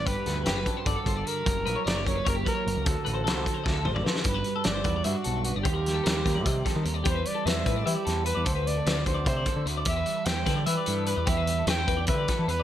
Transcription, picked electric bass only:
\new Staff \with { instrumentName = "Picked electric bass" } { \clef bass \time 7/8 \key g \major \tempo 4 = 150 g,,16 r16 d,8 fis,,8 r8 g,,16 r16 g,,8 r8 | fis,,8 ais,,16 r16 fis,,4 fis,,8 r8 fis,,16 cis,16 | d,16 r16 a,,8 c,8 r8 d,8 a,,8 r8 | g,,8 r8 g,,8 e,8 g,16 r16 b,,8. g,,16 |
ees,4 ees,8 ees,8 c8 r16 ees16 ees,8 | e,8 r8 e,8 a,8 e16 r16 e,8. e,16 | d,4 d,8 d,8 c8 r16 d16 d,8 | e,8 r8 e,8 d8 e16 r16 g,8. e,16 |
e,4 e,8 e,8 d8 r16 e16 e,8 | }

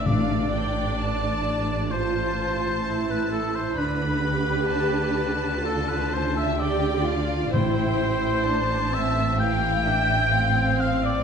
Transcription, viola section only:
\new Staff \with { instrumentName = "Viola section" } { \time 4/4 \key f \lydian \tempo 4 = 64 d'2 f'4 e'4 | d'8 g'4. f'4 g'8 f'8 | e'4 d'8 c'8 e8 d'8 c'4 | }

